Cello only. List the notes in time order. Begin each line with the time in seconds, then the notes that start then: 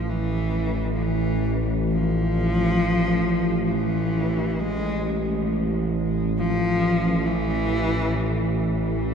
Already playing: F3
0.09 E3
0.93 F3
1.03 E3
1.93 F3
3.64 F3
3.71 E3
4.60 G#3
6.38 F3
7.26 E3